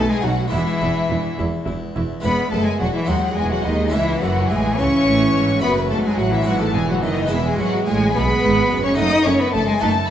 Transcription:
Already playing: B2 A3 B3 D#4
0.09 G#3 G#4 G#5
0.22 B1 B2 F#3 D#4 F#4 F#5
0.48 G#3 B3 E4 E5
0.52 E1 E2 E3 E4
0.81 E1 E2 E4
1.09 E1 E2 E4
1.38 E1 E2 E4
1.66 E1 E2 E4
1.96 E1 E2 E4
2.20 E1 E2 G#3 B3 E4 B4 B5
2.25 E2 B3
2.51 F#1 F#2 A3 A4 A5
2.65 G#3 G#4 G#5
2.80 E1 E2 F#3 F#4 F#5
2.94 E3 E4 E5
3.05 D#2 F#3 G#3 C4 D#4 F#5
3.09 D#2 G#3 F#4
3.36 E1 E2 G#3 G#4 G#5
3.51 F#3 F#4 F#5
3.64 D#2 D#3 D#4 D#5
3.88 G#3 C#4 E4 E5
3.93 C#2 E3 E4
4.20 F#1 F#2 F#3 F#4 F#5
4.49 A1 A2 G#3 G#4 G#5
4.77 C#2 C#3 E3 C#4 C#5 C#6
5.07 A1 A2
5.35 G#1 G#2
5.59 F#2 A3 C#4 F#4 B5
5.63 F#1 F#2 F#3 B3 B4
5.90 G#1 G#2 A3 A4 A5
6.04 G#3 G#4 G#5
6.18 A1 A2 F#3 F#4 F#5
6.32 E3 E4 E5
6.41 G#3 B3 E4
6.46 G#1 G#2 E3 F#3 F#4 F#5
6.60 A3 A4 A5
6.74 E1 E2 G#3 G#4 G#5
6.88 F#3 F#4 F#5
7.02 F#1 F#2 D#3 D#4 D#5
7.26 B3 E4 G#4
7.30 E1 E2 E3 G#3 E4 E5
7.44 G#3 G#4 G#5
7.58 G#1 G#2 F#3 F#4 F#5
7.86 A1 A2 G#3 G#4 G#5
8.14 B1 B2 G#3 B3 B4 B5
8.43 G#1 G#2
8.70 F#1 F#2
8.84 C#4 C#5 C#6
8.94 A3 C#4 D#4 F#4 D#5 D#6
8.98 F#1 F#2
9.25 F#1 F#2 A3 C#4 C#5 C#6
9.39 B3 B4 B5
9.52 F#1 F#2 A3 A4 A5
9.67 G#3 G#4 G#5
9.78 A3 D#4 F#4 A4 A5
9.82 F#1 F#2 A3

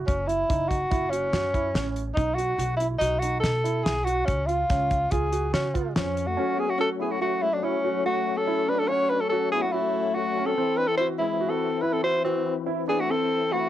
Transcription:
Already playing: F#4
0.07 F#1 C#4, kick, closed hi-hat
0.27 E4, closed hi-hat
0.49 F#1 D#4, kick, closed hi-hat
0.68 F#4, kick, closed hi-hat
0.91 F#1 E4, kick, closed hi-hat
1.10 C#4 F#4, closed hi-hat
1.33 F#2 F#4, snare, closed hi-hat
1.54 E4, kick, closed hi-hat
1.74 A1 C#4, snare, closed hi-hat
1.96 closed hi-hat
2.14 B1 D#4, kick, closed hi-hat
2.34 F#4
2.38 closed hi-hat
2.58 B1 F#4, closed hi-hat
2.76 E4, closed hi-hat
2.98 B1 D#4 F#4, closed hi-hat
3.19 D#4 F#4, closed hi-hat
3.40 B2 A4, snare, closed hi-hat
3.64 E4, closed hi-hat
3.84 B1 G#4, snare, closed hi-hat
4.04 F#4, closed hi-hat
4.25 C#2 C#4, kick, closed hi-hat
4.46 F4, closed hi-hat
4.70 C#2 C#4, kick, snare, closed hi-hat
4.91 kick, closed hi-hat
5.11 C#2 F4 G#4, kick, closed hi-hat
5.32 F#4, closed hi-hat
5.53 C#3 C#4 F#4, snare, closed hi-hat
5.74 F4, kick, closed hi-hat
5.95 F2 F3 C#4, snare, closed hi-hat
6.17 closed hi-hat
6.27 A3 F#4
6.37 F#3 A3 C#4 F#4
6.57 B3 G#4
6.68 A3 F#4
6.78 C#4 F#4 A4
7.00 B3 E4 G#4
7.09 A3 F#4
7.21 A3 F#4
7.42 G#3 E4
7.52 F#3 D4
7.62 F#3 C#4 E4
7.84 F#4
8.05 A3 F#4
8.37 C#4 A4
8.47 E4
8.68 D4 B4
8.79 C#4 A4
8.88 C#4 F#4 C#5
9.09 D4 B4
9.20 C#4 A4
9.29 C#4 F#4 A4
9.52 B3 E4 G#4
9.61 F#4
9.66 A3
9.72 A3 E4 F#4
10.14 A3 F#4
10.37 C#4
10.45 C4 A4
10.57 E3 C4 E4
10.77 D4 B4
10.87 C4 A4
10.97 E4 F#4 C5
11.18 G#3 E4
11.41 F#4
11.50 C4 A4
11.81 E4 B4
11.93 C4 A4
12.03 E4 F#4 C5
12.24 E3 C4 F#4
12.66 E4
12.88 B3 D4 G#4
13.00 A3 F#4
13.09 C4 A4
13.51 A3 E4 F#4

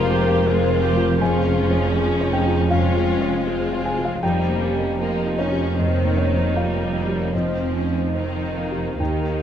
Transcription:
Already playing: F1 F2 C3 F3 G#3 A#3 F4 G#4 A#4 C5 F5 A#5
0.09 G4
0.21 F4 C5
0.47 G#3 C4 F4 G#4 C5
0.71 G#4 C5
0.83 G4
0.96 F4
1.21 F2 F3 C#4 F4 G#4 G#5
1.46 G#3
1.71 F4 C#5
1.94 C#4 G#4 C#6
2.21 G#4 C#5
2.32 D#4 G#4 G5
2.46 F4
2.70 F2 F3 G#3 C#4 F4 F5
2.96 G#3
3.21 F4 C#5
3.46 C4 F4 G#4 F5
3.72 G#4 F5
3.83 G#4 G#5
3.98 F4
4.04 F4 F5
4.22 F1 F2 F3 G3 A#3 D#4 G4 G5
4.49 A#3 F4
4.60 C#4
4.75 A#3 D#5
4.99 F3 A#3 D#4 G4 A#4
5.26 D#5
5.38 C#4 C#5
5.52 A#3 G4
5.76 F2 D#3 F3 C4 D#4 D#5
6.04 A#3 F4
6.17 C#4 C#5
6.30 A#3 D#5
6.37 D#4 D#5
6.55 G3 A#3 F4 G4 A#4 F5
6.82 D#5
6.94 A#3
7.08 A#3 G4
7.32 F2 F3 C4 D#4 D#5
7.60 C4 F4
7.73 C#4
7.87 C4 D#5
8.14 D#3 C4 D#4 G4 C5
8.43 D#5
8.57 A#3
8.71 C4 G4
8.99 D#2 D#3 A#3 D#4 G4 G5
9.29 A#3 D#4

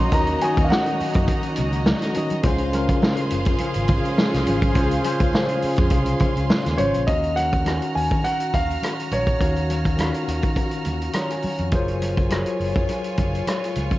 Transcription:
Already playing: D#3 F#3 A#3 C#4 D#4 F#4 D#5 A#5 C6
0.11 D#2 D#3 C#4 F#4 A#4 D#5 A#5, kick, closed hi-hat
0.26 closed hi-hat
0.40 D#3 C#4 F#4 D#5 G#5, closed hi-hat, muted conga
0.57 D#2, kick, closed hi-hat
0.64 F5
0.70 F#5, snare, high conga
0.86 closed hi-hat
1.00 muted fingered electric bass stroke, open hi-hat
1.14 F#2, kick, closed hi-hat
1.28 kick, closed hi-hat, muted conga
1.43 closed hi-hat
1.56 C#2, closed hi-hat, muted conga, low conga
1.73 closed hi-hat
1.86 snare, high conga
2.02 snare, closed hi-hat
2.14 D#3 C#4 F#4 D#5, closed hi-hat, high conga
2.30 closed hi-hat, high conga
2.42 C#2 C#3 F3 G#3 C#4 F4 G#4 C5 F5 C6, kick, closed hi-hat
2.58 closed hi-hat
2.72 C#3 C#4 F4 A#4, closed hi-hat, muted conga
2.89 kick, closed hi-hat
3.02 snare, high conga
3.17 closed hi-hat
3.30 F#1, closed hi-hat
3.45 kick, closed hi-hat
3.58 C#4 F4 G#4, muted fingered electric bass stroke, closed hi-hat, muted conga
3.74 G#1, closed hi-hat
3.88 kick, closed hi-hat, muted conga, low conga
4.05 closed hi-hat
4.18 snare, high conga
4.34 C2, snare, closed hi-hat
4.45 G#1 C#3 C#4 F4 C5, closed hi-hat, high conga
4.62 kick, closed hi-hat, high conga
4.74 C#2 C#3 C#4 F4 C5, kick, closed hi-hat
4.91 closed hi-hat
5.03 C#3 C#4 F4 C5, closed hi-hat, muted conga
5.20 C#2, kick, closed hi-hat
5.33 C5, snare, high conga
5.49 closed hi-hat
5.62 muted fingered electric bass stroke, open hi-hat
5.76 F2, kick, closed hi-hat
5.90 C2, kick, closed hi-hat, muted conga
6.06 closed hi-hat
6.19 kick, closed hi-hat, muted conga, low conga
6.37 C#2, closed hi-hat
6.50 snare, high conga
6.66 D#2, snare, closed hi-hat
6.77 G#1 C#3 C#4 F4 C5 C#5, closed hi-hat, high conga
6.94 A#1, closed hi-hat
7.05 D#2 D#3 C#4 F#4 D#5 F5 A#5 F6, kick, closed hi-hat
7.24 closed hi-hat
7.36 A#4 F#5, closed hi-hat, muted conga
7.53 kick, closed hi-hat
7.64 D#3 C#4 F#4 G#5, cross-stick, closed hi-hat, high conga
7.82 closed hi-hat
7.95 D#2 G#5, open hi-hat
8.11 D#3, kick, closed hi-hat
8.24 F#5, closed hi-hat, muted conga
8.40 closed hi-hat
8.54 D#2 F5, kick, closed hi-hat, muted conga, low conga
8.71 closed hi-hat
8.83 cross-stick, closed hi-hat, high conga
9.00 closed hi-hat
9.11 A#1 C#5, closed hi-hat, high conga
9.27 kick, closed hi-hat
9.39 D#2 D#3 C#4 F#4, kick, closed hi-hat
9.43 F5
9.56 closed hi-hat
9.70 closed hi-hat, muted conga
9.85 kick, closed hi-hat
9.96 D#3 C#4 F4 F5, cross-stick, closed hi-hat, high conga
10.05 F#4
10.14 closed hi-hat
10.28 D#2, closed hi-hat
10.42 D#3, kick, closed hi-hat
10.56 kick, closed hi-hat, muted conga
10.71 closed hi-hat
10.85 D#2, closed hi-hat, muted conga, low conga
11.02 closed hi-hat
11.13 C#5 A#5, cross-stick, closed hi-hat, high conga
11.30 G#5, cross-stick, closed hi-hat
11.42 muted fingered electric bass stroke, open hi-hat, high conga
11.58 F2, closed hi-hat
11.71 F#1 F#3 F4 G#4 A#4 C#5 G#5, kick, closed hi-hat
11.75 C5
11.88 closed hi-hat
12.02 closed hi-hat, muted conga
12.17 kick, closed hi-hat
12.29 F#3 F4 G#4 A#4 C#5, cross-stick, closed hi-hat, high conga
12.46 closed hi-hat
12.60 F#1, open hi-hat
12.75 F#2, kick, closed hi-hat
12.88 closed hi-hat, muted conga
13.04 closed hi-hat
13.17 F#1, kick, closed hi-hat, muted conga, low conga
13.35 closed hi-hat
13.47 cross-stick, closed hi-hat, high conga
13.64 cross-stick, closed hi-hat
13.75 C#2, closed hi-hat, high conga
13.91 kick, closed hi-hat

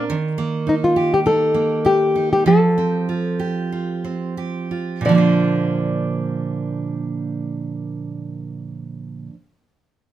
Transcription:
Already playing: C4 D4 A#4
0.10 D#3
0.38 A#3
0.67 D#4
0.84 F4
0.96 G4
1.14 G4
1.26 D#4 A4
1.54 A#3
1.85 G4
2.16 D#4
2.33 G4
2.46 F3 A4
2.78 C4
3.09 F4
3.39 G4
3.72 F4
4.04 C4
4.37 G4
4.71 F4
5.01 A#2
5.05 D3 F3 D5
5.12 A#3 D4
5.18 C5

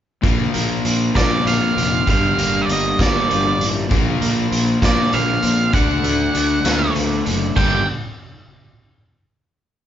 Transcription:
0.22 A#1 A#2 F3 A#3, kick, closed hi-hat
0.54 A#1 A#3, closed hi-hat
0.85 A#1 C4, closed hi-hat
1.15 A#1 A#3 D5, kick, snare, closed hi-hat
1.45 A#1 D3 F5, closed hi-hat
1.77 F1 C4, closed hi-hat
2.06 G1 G2 D3 G3 F5, kick, closed hi-hat
2.38 G1 A#3, closed hi-hat
2.62 D5
2.69 G1 D#5, closed hi-hat
2.99 G1 A#3 D5, kick, snare, closed hi-hat
3.29 G1 F3, closed hi-hat
3.59 A1 D4, closed hi-hat
3.89 A#1 A#2 F3 A#3, kick, closed hi-hat
4.21 A#1 A#3, closed hi-hat
4.52 A#1 C4, closed hi-hat
4.82 A#1 A#3 D5, kick, snare, closed hi-hat
5.13 A#1 D3 F5, closed hi-hat
5.42 A#1 C4, closed hi-hat
5.73 D2 D3 A3 D4 F#5, kick, closed hi-hat
6.04 D2 A3, closed hi-hat
6.33 D2 D4, closed hi-hat
6.64 D2 A3, snare, closed hi-hat
6.95 D2 D3, closed hi-hat
7.26 F#1 D4, closed hi-hat
7.55 G1 G2 D3 F3 G3 A#3 D4 G4 G5, kick, crash

